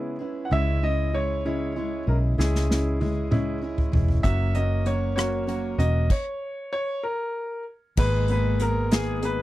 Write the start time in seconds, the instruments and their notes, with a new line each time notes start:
Already playing: steel-string acoustic guitar C#3 G#3 B3 E4 G#4, grand piano B3 C#4 E4 G#4
0.19 grand piano B3 C#4 E4, steel-string acoustic guitar B3 E4 G#4
0.45 grand piano F#5
0.51 fingered electric bass C#2, steel-string acoustic guitar C#3 G#3 C#4 E4 G#4, grand piano G#3 C#4 E4 E5
0.82 grand piano G#3 C#4 E4 D#5, steel-string acoustic guitar C#4 E4 G#4
1.13 grand piano G#3 C#4 E4 C#5, steel-string acoustic guitar G#3 C#4 E4 G#4
1.45 steel-string acoustic guitar C#3 G#3 C#4 E4 G#4, grand piano G#3 C#4 E4
1.76 steel-string acoustic guitar G#3 C#4 E4 G#4, grand piano G#3 C#4 E4
2.07 fingered electric bass B1, grand piano G#3 C#4 E4 A#4, steel-string acoustic guitar C#4 E4 G#4
2.38 fingered electric bass C#2, steel-string acoustic guitar C#3 G#3 C#4 E4 G#4, grand piano G#3 C#4 E4 G#4, snare
2.55 snare
2.69 grand piano G#3 C#4 E4, steel-string acoustic guitar C#4 E4 G#4, snare
3.00 grand piano G#3 C#4 E4, steel-string acoustic guitar G#3 C#4 E4 G#4, high tom
3.31 steel-string acoustic guitar C#3 G#3 C#4 E4 G#4, grand piano G#3 C#4 E4, mid tom
3.62 steel-string acoustic guitar G#3 C#4 E4 G#4, grand piano G#3 C#4 E4
3.78 floor tom
3.92 fingered electric bass E1, grand piano G#3 C#4 E4, steel-string acoustic guitar C#4 E4 G#4, floor tom
4.08 floor tom
4.23 fingered electric bass F#1, steel-string acoustic guitar F#3 C#4 F#4 A#4, grand piano A#3 C#4 F#4 E5, kick, closed hi-hat
4.54 grand piano A#3 C#4 F#4 D#5, steel-string acoustic guitar C#4 F#4 A#4, closed hi-hat
4.85 steel-string acoustic guitar F#3 C#4 F#4 A#4, grand piano A#3 C#4 F#4 C#5, closed hi-hat
5.16 steel-string acoustic guitar F#3 C#4 F#4 A#4, grand piano A#3 C#4 F#4 C#5, cross-stick, closed hi-hat
5.47 steel-string acoustic guitar F#3 C#4 F#4 A#4, grand piano A#3 C#4 F#4, closed hi-hat
5.78 fingered electric bass E1, grand piano A#3 C#4 F#4 D#5, steel-string acoustic guitar C#4 F#4 A#4, closed hi-hat
6.10 grand piano C#5, kick, crash
6.73 grand piano C#5
7.03 grand piano A#4
7.97 fingered electric bass G#1, steel-string acoustic guitar G#2 D#3 G#3 B3 G#4, grand piano A#3 B3 G#4 B4, kick, crash
8.28 grand piano A#3 B3 G#4 B4, closed hi-hat
8.60 steel-string acoustic guitar G#3 B3 G#4 A#4, grand piano A#3 B3 G#4 A#4, closed hi-hat
8.91 steel-string acoustic guitar G#2 D#3 G#3 B3 G#4, grand piano A#3 B3 G#4, snare, closed hi-hat
9.22 grand piano A#3 B3 G#4 B4, closed hi-hat